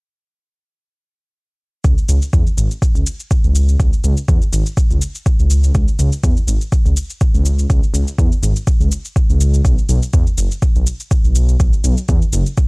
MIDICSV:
0, 0, Header, 1, 3, 480
1, 0, Start_track
1, 0, Key_signature, 4, "minor"
1, 0, Tempo, 487805
1, 1814, Time_signature, 4, 2, 24, 8
1, 12476, End_track
2, 0, Start_track
2, 0, Title_t, "Detuned saw bass"
2, 0, Program_c, 0, 39
2, 1815, Note_on_c, 0, 37, 90
2, 1919, Note_off_c, 0, 37, 0
2, 2053, Note_on_c, 0, 37, 84
2, 2158, Note_off_c, 0, 37, 0
2, 2294, Note_on_c, 0, 40, 87
2, 2399, Note_off_c, 0, 40, 0
2, 2535, Note_on_c, 0, 32, 95
2, 2639, Note_off_c, 0, 32, 0
2, 2906, Note_on_c, 0, 37, 95
2, 2992, Note_off_c, 0, 37, 0
2, 3386, Note_on_c, 0, 37, 90
2, 3699, Note_off_c, 0, 37, 0
2, 3737, Note_on_c, 0, 37, 95
2, 3840, Note_off_c, 0, 37, 0
2, 3976, Note_on_c, 0, 37, 84
2, 4080, Note_off_c, 0, 37, 0
2, 4215, Note_on_c, 0, 40, 90
2, 4319, Note_off_c, 0, 40, 0
2, 4455, Note_on_c, 0, 32, 87
2, 4559, Note_off_c, 0, 32, 0
2, 4828, Note_on_c, 0, 37, 95
2, 4913, Note_off_c, 0, 37, 0
2, 5309, Note_on_c, 0, 37, 95
2, 5620, Note_off_c, 0, 37, 0
2, 5656, Note_on_c, 0, 37, 96
2, 5760, Note_off_c, 0, 37, 0
2, 5895, Note_on_c, 0, 37, 85
2, 5999, Note_off_c, 0, 37, 0
2, 6135, Note_on_c, 0, 40, 89
2, 6239, Note_off_c, 0, 40, 0
2, 6371, Note_on_c, 0, 32, 93
2, 6477, Note_off_c, 0, 32, 0
2, 6745, Note_on_c, 0, 37, 93
2, 6832, Note_off_c, 0, 37, 0
2, 7225, Note_on_c, 0, 37, 93
2, 7539, Note_off_c, 0, 37, 0
2, 7576, Note_on_c, 0, 37, 92
2, 7679, Note_off_c, 0, 37, 0
2, 7811, Note_on_c, 0, 37, 85
2, 7917, Note_off_c, 0, 37, 0
2, 8055, Note_on_c, 0, 40, 91
2, 8159, Note_off_c, 0, 40, 0
2, 8291, Note_on_c, 0, 32, 93
2, 8397, Note_off_c, 0, 32, 0
2, 8662, Note_on_c, 0, 37, 103
2, 8750, Note_off_c, 0, 37, 0
2, 9145, Note_on_c, 0, 37, 99
2, 9458, Note_off_c, 0, 37, 0
2, 9493, Note_on_c, 0, 35, 95
2, 9598, Note_off_c, 0, 35, 0
2, 9732, Note_on_c, 0, 35, 82
2, 9838, Note_off_c, 0, 35, 0
2, 9973, Note_on_c, 0, 40, 90
2, 10078, Note_off_c, 0, 40, 0
2, 10211, Note_on_c, 0, 30, 90
2, 10317, Note_off_c, 0, 30, 0
2, 10586, Note_on_c, 0, 35, 99
2, 10672, Note_off_c, 0, 35, 0
2, 11061, Note_on_c, 0, 35, 95
2, 11376, Note_off_c, 0, 35, 0
2, 11413, Note_on_c, 0, 35, 99
2, 11518, Note_off_c, 0, 35, 0
2, 11649, Note_on_c, 0, 35, 80
2, 11756, Note_off_c, 0, 35, 0
2, 11895, Note_on_c, 0, 40, 88
2, 11999, Note_off_c, 0, 40, 0
2, 12131, Note_on_c, 0, 30, 91
2, 12237, Note_off_c, 0, 30, 0
2, 12476, End_track
3, 0, Start_track
3, 0, Title_t, "Drums"
3, 1814, Note_on_c, 9, 82, 47
3, 1815, Note_on_c, 9, 36, 109
3, 1913, Note_off_c, 9, 36, 0
3, 1913, Note_off_c, 9, 82, 0
3, 1947, Note_on_c, 9, 82, 23
3, 2046, Note_off_c, 9, 82, 0
3, 2054, Note_on_c, 9, 82, 82
3, 2152, Note_off_c, 9, 82, 0
3, 2186, Note_on_c, 9, 82, 36
3, 2284, Note_off_c, 9, 82, 0
3, 2294, Note_on_c, 9, 36, 110
3, 2294, Note_on_c, 9, 82, 50
3, 2393, Note_off_c, 9, 36, 0
3, 2393, Note_off_c, 9, 82, 0
3, 2427, Note_on_c, 9, 82, 24
3, 2526, Note_off_c, 9, 82, 0
3, 2536, Note_on_c, 9, 82, 91
3, 2634, Note_off_c, 9, 82, 0
3, 2667, Note_on_c, 9, 82, 36
3, 2766, Note_off_c, 9, 82, 0
3, 2775, Note_on_c, 9, 36, 104
3, 2777, Note_on_c, 9, 82, 49
3, 2874, Note_off_c, 9, 36, 0
3, 2876, Note_off_c, 9, 82, 0
3, 2906, Note_on_c, 9, 82, 25
3, 3005, Note_off_c, 9, 82, 0
3, 3015, Note_on_c, 9, 82, 83
3, 3114, Note_off_c, 9, 82, 0
3, 3148, Note_on_c, 9, 82, 34
3, 3246, Note_off_c, 9, 82, 0
3, 3256, Note_on_c, 9, 36, 113
3, 3256, Note_on_c, 9, 82, 49
3, 3354, Note_off_c, 9, 36, 0
3, 3354, Note_off_c, 9, 82, 0
3, 3387, Note_on_c, 9, 82, 25
3, 3485, Note_off_c, 9, 82, 0
3, 3496, Note_on_c, 9, 82, 85
3, 3594, Note_off_c, 9, 82, 0
3, 3628, Note_on_c, 9, 82, 35
3, 3726, Note_off_c, 9, 82, 0
3, 3736, Note_on_c, 9, 36, 108
3, 3737, Note_on_c, 9, 82, 47
3, 3834, Note_off_c, 9, 36, 0
3, 3835, Note_off_c, 9, 82, 0
3, 3868, Note_on_c, 9, 82, 25
3, 3966, Note_off_c, 9, 82, 0
3, 3975, Note_on_c, 9, 82, 88
3, 4074, Note_off_c, 9, 82, 0
3, 4105, Note_on_c, 9, 82, 37
3, 4203, Note_off_c, 9, 82, 0
3, 4215, Note_on_c, 9, 36, 115
3, 4215, Note_on_c, 9, 82, 49
3, 4314, Note_off_c, 9, 36, 0
3, 4314, Note_off_c, 9, 82, 0
3, 4347, Note_on_c, 9, 82, 26
3, 4445, Note_off_c, 9, 82, 0
3, 4456, Note_on_c, 9, 82, 90
3, 4554, Note_off_c, 9, 82, 0
3, 4587, Note_on_c, 9, 82, 39
3, 4686, Note_off_c, 9, 82, 0
3, 4696, Note_on_c, 9, 36, 109
3, 4696, Note_on_c, 9, 82, 51
3, 4794, Note_off_c, 9, 36, 0
3, 4794, Note_off_c, 9, 82, 0
3, 4827, Note_on_c, 9, 82, 26
3, 4926, Note_off_c, 9, 82, 0
3, 4936, Note_on_c, 9, 82, 89
3, 5034, Note_off_c, 9, 82, 0
3, 5069, Note_on_c, 9, 82, 37
3, 5167, Note_off_c, 9, 82, 0
3, 5176, Note_on_c, 9, 36, 111
3, 5176, Note_on_c, 9, 82, 51
3, 5274, Note_off_c, 9, 82, 0
3, 5275, Note_off_c, 9, 36, 0
3, 5309, Note_on_c, 9, 82, 26
3, 5407, Note_off_c, 9, 82, 0
3, 5413, Note_on_c, 9, 82, 84
3, 5512, Note_off_c, 9, 82, 0
3, 5547, Note_on_c, 9, 82, 37
3, 5645, Note_off_c, 9, 82, 0
3, 5654, Note_on_c, 9, 82, 49
3, 5657, Note_on_c, 9, 36, 112
3, 5753, Note_off_c, 9, 82, 0
3, 5755, Note_off_c, 9, 36, 0
3, 5786, Note_on_c, 9, 82, 25
3, 5884, Note_off_c, 9, 82, 0
3, 5895, Note_on_c, 9, 82, 86
3, 5993, Note_off_c, 9, 82, 0
3, 6026, Note_on_c, 9, 82, 38
3, 6124, Note_off_c, 9, 82, 0
3, 6135, Note_on_c, 9, 82, 53
3, 6136, Note_on_c, 9, 36, 115
3, 6234, Note_off_c, 9, 36, 0
3, 6234, Note_off_c, 9, 82, 0
3, 6267, Note_on_c, 9, 82, 26
3, 6365, Note_off_c, 9, 82, 0
3, 6374, Note_on_c, 9, 82, 96
3, 6473, Note_off_c, 9, 82, 0
3, 6507, Note_on_c, 9, 82, 38
3, 6605, Note_off_c, 9, 82, 0
3, 6616, Note_on_c, 9, 36, 110
3, 6616, Note_on_c, 9, 82, 55
3, 6714, Note_off_c, 9, 36, 0
3, 6714, Note_off_c, 9, 82, 0
3, 6749, Note_on_c, 9, 82, 25
3, 6847, Note_off_c, 9, 82, 0
3, 6855, Note_on_c, 9, 82, 89
3, 6953, Note_off_c, 9, 82, 0
3, 6987, Note_on_c, 9, 82, 37
3, 7085, Note_off_c, 9, 82, 0
3, 7094, Note_on_c, 9, 82, 53
3, 7096, Note_on_c, 9, 36, 112
3, 7192, Note_off_c, 9, 82, 0
3, 7194, Note_off_c, 9, 36, 0
3, 7228, Note_on_c, 9, 82, 26
3, 7327, Note_off_c, 9, 82, 0
3, 7335, Note_on_c, 9, 82, 89
3, 7434, Note_off_c, 9, 82, 0
3, 7468, Note_on_c, 9, 82, 38
3, 7566, Note_off_c, 9, 82, 0
3, 7576, Note_on_c, 9, 36, 114
3, 7577, Note_on_c, 9, 82, 52
3, 7674, Note_off_c, 9, 36, 0
3, 7675, Note_off_c, 9, 82, 0
3, 7709, Note_on_c, 9, 82, 24
3, 7807, Note_off_c, 9, 82, 0
3, 7816, Note_on_c, 9, 82, 86
3, 7915, Note_off_c, 9, 82, 0
3, 7948, Note_on_c, 9, 82, 39
3, 8046, Note_off_c, 9, 82, 0
3, 8054, Note_on_c, 9, 36, 118
3, 8055, Note_on_c, 9, 82, 51
3, 8153, Note_off_c, 9, 36, 0
3, 8154, Note_off_c, 9, 82, 0
3, 8188, Note_on_c, 9, 82, 26
3, 8286, Note_off_c, 9, 82, 0
3, 8295, Note_on_c, 9, 82, 95
3, 8394, Note_off_c, 9, 82, 0
3, 8425, Note_on_c, 9, 82, 38
3, 8523, Note_off_c, 9, 82, 0
3, 8533, Note_on_c, 9, 82, 51
3, 8534, Note_on_c, 9, 36, 111
3, 8632, Note_off_c, 9, 36, 0
3, 8632, Note_off_c, 9, 82, 0
3, 8665, Note_on_c, 9, 82, 25
3, 8764, Note_off_c, 9, 82, 0
3, 8773, Note_on_c, 9, 82, 88
3, 8871, Note_off_c, 9, 82, 0
3, 8905, Note_on_c, 9, 82, 35
3, 9004, Note_off_c, 9, 82, 0
3, 9013, Note_on_c, 9, 36, 114
3, 9015, Note_on_c, 9, 82, 50
3, 9112, Note_off_c, 9, 36, 0
3, 9113, Note_off_c, 9, 82, 0
3, 9149, Note_on_c, 9, 82, 25
3, 9248, Note_off_c, 9, 82, 0
3, 9256, Note_on_c, 9, 82, 90
3, 9354, Note_off_c, 9, 82, 0
3, 9386, Note_on_c, 9, 82, 38
3, 9485, Note_off_c, 9, 82, 0
3, 9493, Note_on_c, 9, 36, 105
3, 9494, Note_on_c, 9, 82, 49
3, 9591, Note_off_c, 9, 36, 0
3, 9592, Note_off_c, 9, 82, 0
3, 9627, Note_on_c, 9, 82, 23
3, 9725, Note_off_c, 9, 82, 0
3, 9731, Note_on_c, 9, 82, 84
3, 9830, Note_off_c, 9, 82, 0
3, 9865, Note_on_c, 9, 82, 38
3, 9963, Note_off_c, 9, 82, 0
3, 9971, Note_on_c, 9, 82, 50
3, 9973, Note_on_c, 9, 36, 108
3, 10069, Note_off_c, 9, 82, 0
3, 10072, Note_off_c, 9, 36, 0
3, 10104, Note_on_c, 9, 82, 25
3, 10202, Note_off_c, 9, 82, 0
3, 10212, Note_on_c, 9, 82, 89
3, 10310, Note_off_c, 9, 82, 0
3, 10346, Note_on_c, 9, 82, 36
3, 10444, Note_off_c, 9, 82, 0
3, 10452, Note_on_c, 9, 82, 50
3, 10453, Note_on_c, 9, 36, 101
3, 10550, Note_off_c, 9, 82, 0
3, 10551, Note_off_c, 9, 36, 0
3, 10584, Note_on_c, 9, 82, 26
3, 10682, Note_off_c, 9, 82, 0
3, 10692, Note_on_c, 9, 82, 86
3, 10790, Note_off_c, 9, 82, 0
3, 10824, Note_on_c, 9, 82, 35
3, 10922, Note_off_c, 9, 82, 0
3, 10933, Note_on_c, 9, 36, 107
3, 10934, Note_on_c, 9, 82, 48
3, 11032, Note_off_c, 9, 36, 0
3, 11032, Note_off_c, 9, 82, 0
3, 11066, Note_on_c, 9, 82, 24
3, 11164, Note_off_c, 9, 82, 0
3, 11171, Note_on_c, 9, 82, 86
3, 11269, Note_off_c, 9, 82, 0
3, 11304, Note_on_c, 9, 82, 37
3, 11402, Note_off_c, 9, 82, 0
3, 11413, Note_on_c, 9, 36, 102
3, 11413, Note_on_c, 9, 82, 46
3, 11511, Note_off_c, 9, 82, 0
3, 11512, Note_off_c, 9, 36, 0
3, 11543, Note_on_c, 9, 82, 23
3, 11642, Note_off_c, 9, 82, 0
3, 11651, Note_on_c, 9, 82, 81
3, 11750, Note_off_c, 9, 82, 0
3, 11783, Note_on_c, 9, 82, 37
3, 11881, Note_off_c, 9, 82, 0
3, 11891, Note_on_c, 9, 82, 48
3, 11894, Note_on_c, 9, 36, 105
3, 11989, Note_off_c, 9, 82, 0
3, 11992, Note_off_c, 9, 36, 0
3, 12023, Note_on_c, 9, 82, 24
3, 12122, Note_off_c, 9, 82, 0
3, 12130, Note_on_c, 9, 82, 87
3, 12229, Note_off_c, 9, 82, 0
3, 12264, Note_on_c, 9, 82, 37
3, 12362, Note_off_c, 9, 82, 0
3, 12372, Note_on_c, 9, 82, 47
3, 12374, Note_on_c, 9, 36, 99
3, 12470, Note_off_c, 9, 82, 0
3, 12473, Note_off_c, 9, 36, 0
3, 12476, End_track
0, 0, End_of_file